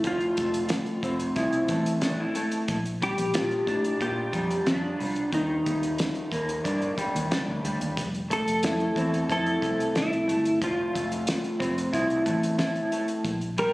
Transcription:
Already playing: clean electric guitar A3 C4
0.04 fingered electric bass F1, clean electric guitar F3, electric slide guitar F4, kick, closed hi-hat
0.21 closed hi-hat
0.37 fingered electric bass F1, clean electric guitar A3, kick, closed hi-hat
0.54 closed hi-hat
0.69 snare, closed hi-hat
0.86 closed hi-hat
1.03 fingered electric bass F1, clean electric guitar C4, kick, closed hi-hat
1.20 closed hi-hat
1.36 fingered electric bass C2, clean electric guitar E4, kick, snare, closed hi-hat
1.53 closed hi-hat
1.68 fingered electric bass A1, clean electric guitar A3, kick, closed hi-hat
1.86 closed hi-hat
2.01 clean electric guitar D4, snare, closed hi-hat
2.20 clean electric guitar E4
2.35 clean electric guitar A3, closed hi-hat
2.52 closed hi-hat
2.68 fingered electric bass A#1, kick, closed hi-hat
2.85 closed hi-hat
3.02 clean electric guitar G3, electric slide guitar G4, kick, closed hi-hat
3.18 fingered electric bass A#1, closed hi-hat
3.34 fingered electric bass A#2, clean electric guitar F4, snare, closed hi-hat
3.51 closed hi-hat
3.67 fingered electric bass A2, clean electric guitar D4, kick, closed hi-hat
3.84 closed hi-hat
4.01 fingered electric bass A#2, clean electric guitar F4, electric slide guitar G4, kick, closed hi-hat
4.33 fingered electric bass F2, clean electric guitar G3, kick, closed hi-hat
4.51 closed hi-hat
4.66 fingered electric bass F2, electric slide guitar D4, clean electric guitar F4, snare, closed hi-hat
4.99 fingered electric bass C2, clean electric guitar G3, open hi-hat
5.16 closed hi-hat
5.32 fingered electric bass D#2, clean electric guitar D#3, electric slide guitar D#4, kick, closed hi-hat
5.66 fingered electric bass D#2, clean electric guitar G3, kick, closed hi-hat
5.83 closed hi-hat
5.98 snare, closed hi-hat
6.15 closed hi-hat
6.31 fingered electric bass D#2, clean electric guitar A#3, kick, closed hi-hat
6.49 closed hi-hat
6.64 fingered electric bass G2, clean electric guitar D4, kick, closed hi-hat
6.82 closed hi-hat
6.98 clean electric guitar G3, muted fingered electric bass stroke, kick, closed hi-hat
7.15 fingered electric bass D#2, closed hi-hat
7.31 clean electric guitar D4, snare, closed hi-hat
7.48 fingered electric bass D2
7.64 fingered electric bass D2, clean electric guitar G3, closed hi-hat
7.80 fingered electric bass D#2, closed hi-hat
7.97 fingered electric bass F1, kick, closed hi-hat
8.14 closed hi-hat
8.30 clean electric guitar A3, electric slide guitar A4, kick, closed hi-hat
8.47 fingered electric bass F1, closed hi-hat
8.63 fingered electric bass F2, clean electric guitar E4, snare, closed hi-hat
8.80 closed hi-hat
8.96 fingered electric bass E2, clean electric guitar C4, kick, closed hi-hat
9.14 closed hi-hat
9.30 fingered electric bass F2, clean electric guitar E4, electric slide guitar A4, kick, snare, closed hi-hat
9.46 closed hi-hat
9.62 fingered electric bass C2, clean electric guitar A3, kick, closed hi-hat
9.80 closed hi-hat
9.95 fingered electric bass C2, electric slide guitar E4, snare, closed hi-hat
10.13 closed hi-hat
10.28 fingered electric bass G1, clean electric guitar A3, closed hi-hat
10.45 closed hi-hat
10.61 fingered electric bass F1, clean electric guitar F3, electric slide guitar F4, kick, closed hi-hat
10.93 fingered electric bass F1, clean electric guitar A3, kick, closed hi-hat
11.12 closed hi-hat
11.27 snare, closed hi-hat
11.44 closed hi-hat
11.60 fingered electric bass F1, clean electric guitar C4, kick, closed hi-hat
11.78 closed hi-hat
11.93 fingered electric bass C2, clean electric guitar E4, kick, closed hi-hat
12.10 closed hi-hat
12.26 fingered electric bass A1, clean electric guitar A3, kick, closed hi-hat
12.43 closed hi-hat
12.58 clean electric guitar E4, snare, closed hi-hat
12.76 closed hi-hat
12.92 clean electric guitar A3, closed hi-hat
13.08 closed hi-hat
13.25 fingered electric bass A#1, kick, closed hi-hat
13.41 closed hi-hat
13.58 clean electric guitar G3, electric slide guitar A#4, kick, closed hi-hat

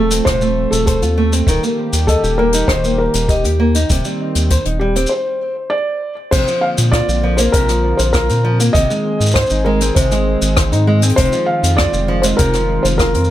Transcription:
Already playing: analog synth bass D#1, analog synth pad F3 A3 C4 A4, nylon-string guitar A3, felt piano A4
0.11 nylon-string guitar C4, closed hi-hat, shaker
0.25 analog synth bass D#1, nylon-string guitar C3, felt piano C5, kick, cross-stick, closed hi-hat, shaker
0.41 nylon-string guitar A3, shaker
0.71 analog synth bass D#1, felt piano A4, closed hi-hat, shaker
0.86 felt piano A4, nylon-string guitar C5, kick, closed hi-hat, shaker
1.02 analog synth bass D#2, nylon-string guitar F4, closed hi-hat, shaker
1.18 nylon-string guitar A3
1.33 nylon-string guitar C4, closed hi-hat, shaker
1.47 analog synth bass D#1, analog synth pad D#3 G3 A#3 G4, nylon-string guitar D#3, kick, closed hi-hat, shaker
1.63 nylon-string guitar A#3, shaker
1.93 analog synth bass D#2, closed hi-hat, shaker
2.07 felt piano A4, nylon-string guitar D#5, kick, closed hi-hat, shaker
2.23 analog synth bass D#1, nylon-string guitar G4, shaker
2.38 nylon-string guitar A#3, felt piano A#4
2.53 nylon-string guitar D#4, closed hi-hat, shaker
2.68 analog synth bass D#1, nylon-string guitar D#3, felt piano C5, kick, cross-stick, closed hi-hat, shaker
2.84 nylon-string guitar A#3, shaker
2.98 felt piano A#4
3.14 analog synth bass D#1, closed hi-hat, shaker
3.28 felt piano G4, nylon-string guitar D#5, kick, closed hi-hat, shaker
3.44 analog synth bass D#2, nylon-string guitar G4, closed hi-hat, shaker
3.60 nylon-string guitar A#3
3.74 nylon-string guitar D#4, closed hi-hat, shaker
3.90 analog synth bass D#1, nylon-string guitar C3, analog synth pad D#3 C4, kick, closed hi-hat, shaker
4.05 nylon-string guitar G3, shaker
4.35 analog synth bass D#2, closed hi-hat, shaker
4.50 nylon-string guitar C5, kick, closed hi-hat, shaker
4.65 analog synth bass D#1, nylon-string guitar D#4, closed hi-hat
4.79 nylon-string guitar G3, felt piano G4
4.96 nylon-string guitar C4, closed hi-hat, shaker
5.06 felt piano C5, shaker
5.70 felt piano D5
6.31 analog synth bass A#1, nylon-string guitar C3, analog synth pad D3 A#3 C4 F4, felt piano C5, kick, closed hi-hat, crash, shaker
6.48 nylon-string guitar F3, shaker
6.61 felt piano F5
6.78 analog synth bass A#2, closed hi-hat, shaker
6.92 nylon-string guitar F4, felt piano D5, kick, cross-stick, closed hi-hat, shaker
7.08 analog synth bass A#1, nylon-string guitar C4, shaker
7.23 nylon-string guitar F3
7.37 nylon-string guitar A#3, felt piano C5, closed hi-hat, shaker
7.52 analog synth bass A#1, nylon-string guitar C3, felt piano A#4, kick, closed hi-hat, shaker
7.69 nylon-string guitar F3, cross-stick, closed hi-hat, shaker
7.97 analog synth bass A#1, felt piano C5, closed hi-hat, shaker
8.13 nylon-string guitar F4, felt piano A#4, kick, cross-stick, closed hi-hat, shaker
8.29 analog synth bass A#2, nylon-string guitar C4, closed hi-hat, shaker
8.45 nylon-string guitar F3
8.60 nylon-string guitar A#3, closed hi-hat, shaker
8.73 analog synth bass G#1, nylon-string guitar C3, analog synth pad D#3 G#3 G#4, felt piano D#5, kick, closed hi-hat, shaker
8.90 nylon-string guitar G#3, shaker
9.20 analog synth bass G#2, shaker
9.26 shaker
9.31 felt piano C5, shaker
9.36 nylon-string guitar C5, kick, cross-stick, closed hi-hat, shaker
9.41 shaker
9.46 shaker
9.50 analog synth bass G#1, nylon-string guitar D#4, shaker
9.65 nylon-string guitar G#3, felt piano A#4
9.81 nylon-string guitar C4, closed hi-hat, shaker
9.95 analog synth bass G#1, nylon-string guitar C3, felt piano C5, kick, closed hi-hat, shaker
10.11 nylon-string guitar G#3, cross-stick, closed hi-hat, shaker
10.42 analog synth bass G#1, closed hi-hat, shaker
10.57 nylon-string guitar C5, kick, cross-stick, closed hi-hat, shaker
10.72 analog synth bass G#2, nylon-string guitar D#4, closed hi-hat, shaker
10.87 nylon-string guitar G#3
11.02 nylon-string guitar C4, closed hi-hat, shaker
11.09 closed hi-hat
11.16 analog synth bass F1, nylon-string guitar C3, analog synth pad F4, felt piano C5, kick, closed hi-hat, shaker
11.32 nylon-string guitar F3, shaker
11.46 felt piano F5
11.63 analog synth bass F2, closed hi-hat, shaker
11.77 nylon-string guitar F4, felt piano D5, kick, cross-stick, closed hi-hat, shaker
11.93 analog synth bass F1, nylon-string guitar C4, shaker
12.08 nylon-string guitar F3
12.22 nylon-string guitar G#3, felt piano C5, closed hi-hat, shaker
12.37 analog synth bass F1, nylon-string guitar C3, felt piano A#4, kick, closed hi-hat, shaker
12.53 nylon-string guitar F3, cross-stick, closed hi-hat, shaker
12.83 analog synth bass F1, felt piano C5, closed hi-hat, shaker
12.98 nylon-string guitar F4, felt piano A#4, kick, cross-stick, closed hi-hat, shaker
13.14 analog synth bass F2, nylon-string guitar C4, closed hi-hat, shaker
13.24 shaker

